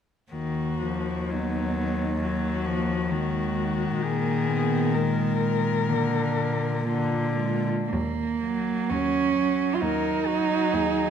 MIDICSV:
0, 0, Header, 1, 5, 480
1, 0, Start_track
1, 0, Key_signature, -6, "minor"
1, 0, Tempo, 990099
1, 154, Time_signature, 4, 2, 24, 8
1, 632, Tempo, 909091
1, 2552, Tempo, 966184
1, 3512, Tempo, 1050788
1, 3992, Tempo, 980392
1, 4472, Tempo, 920245
1, 5618, End_track
2, 0, Start_track
2, 0, Title_t, "Cello"
2, 0, Program_c, 0, 42
2, 158, Note_on_c, 0, 66, 24
2, 637, Note_on_c, 0, 63, 27
2, 645, Note_off_c, 0, 66, 0
2, 881, Note_off_c, 0, 63, 0
2, 885, Note_on_c, 0, 63, 28
2, 1122, Note_on_c, 0, 66, 31
2, 1130, Note_off_c, 0, 63, 0
2, 1589, Note_off_c, 0, 66, 0
2, 1592, Note_on_c, 0, 66, 33
2, 2073, Note_on_c, 0, 68, 38
2, 2081, Note_off_c, 0, 66, 0
2, 2551, Note_on_c, 0, 70, 40
2, 2558, Note_off_c, 0, 68, 0
2, 3511, Note_off_c, 0, 70, 0
2, 3516, Note_on_c, 0, 65, 34
2, 3887, Note_off_c, 0, 65, 0
2, 4949, Note_on_c, 0, 70, 36
2, 5184, Note_on_c, 0, 66, 37
2, 5192, Note_off_c, 0, 70, 0
2, 5435, Note_on_c, 0, 68, 35
2, 5443, Note_off_c, 0, 66, 0
2, 5618, Note_off_c, 0, 68, 0
2, 5618, End_track
3, 0, Start_track
3, 0, Title_t, "Cello"
3, 0, Program_c, 1, 42
3, 154, Note_on_c, 1, 58, 29
3, 635, Note_on_c, 1, 59, 32
3, 643, Note_off_c, 1, 58, 0
3, 1106, Note_off_c, 1, 59, 0
3, 1109, Note_on_c, 1, 58, 30
3, 1583, Note_on_c, 1, 56, 38
3, 1590, Note_off_c, 1, 58, 0
3, 2065, Note_on_c, 1, 58, 41
3, 2072, Note_off_c, 1, 56, 0
3, 2308, Note_on_c, 1, 59, 46
3, 2316, Note_off_c, 1, 58, 0
3, 2547, Note_on_c, 1, 56, 45
3, 2555, Note_off_c, 1, 59, 0
3, 3021, Note_on_c, 1, 58, 41
3, 3028, Note_off_c, 1, 56, 0
3, 3502, Note_off_c, 1, 58, 0
3, 3505, Note_on_c, 1, 58, 35
3, 3743, Note_off_c, 1, 58, 0
3, 3745, Note_on_c, 1, 56, 39
3, 3971, Note_off_c, 1, 56, 0
3, 3984, Note_on_c, 1, 58, 54
3, 4467, Note_on_c, 1, 61, 61
3, 4474, Note_off_c, 1, 58, 0
3, 4912, Note_on_c, 1, 65, 33
3, 4920, Note_off_c, 1, 61, 0
3, 4944, Note_on_c, 1, 63, 53
3, 4952, Note_off_c, 1, 65, 0
3, 5618, Note_off_c, 1, 63, 0
3, 5618, End_track
4, 0, Start_track
4, 0, Title_t, "Cello"
4, 0, Program_c, 2, 42
4, 154, Note_on_c, 2, 51, 27
4, 380, Note_off_c, 2, 51, 0
4, 395, Note_on_c, 2, 53, 25
4, 635, Note_on_c, 2, 54, 29
4, 642, Note_off_c, 2, 53, 0
4, 1110, Note_off_c, 2, 54, 0
4, 1114, Note_on_c, 2, 54, 31
4, 1346, Note_on_c, 2, 53, 37
4, 1354, Note_off_c, 2, 54, 0
4, 1585, Note_on_c, 2, 51, 43
4, 1593, Note_off_c, 2, 53, 0
4, 3028, Note_on_c, 2, 50, 37
4, 3036, Note_off_c, 2, 51, 0
4, 3512, Note_off_c, 2, 50, 0
4, 3518, Note_on_c, 2, 50, 41
4, 3888, Note_off_c, 2, 50, 0
4, 4240, Note_on_c, 2, 54, 31
4, 4705, Note_off_c, 2, 54, 0
4, 4713, Note_on_c, 2, 54, 28
4, 5178, Note_off_c, 2, 54, 0
4, 5192, Note_on_c, 2, 54, 35
4, 5618, Note_off_c, 2, 54, 0
4, 5618, End_track
5, 0, Start_track
5, 0, Title_t, "Cello"
5, 0, Program_c, 3, 42
5, 157, Note_on_c, 3, 39, 29
5, 2051, Note_off_c, 3, 39, 0
5, 2070, Note_on_c, 3, 46, 40
5, 3874, Note_off_c, 3, 46, 0
5, 3994, Note_on_c, 3, 39, 45
5, 4407, Note_off_c, 3, 39, 0
5, 4473, Note_on_c, 3, 39, 40
5, 4881, Note_off_c, 3, 39, 0
5, 4950, Note_on_c, 3, 39, 37
5, 5360, Note_off_c, 3, 39, 0
5, 5427, Note_on_c, 3, 39, 40
5, 5618, Note_off_c, 3, 39, 0
5, 5618, End_track
0, 0, End_of_file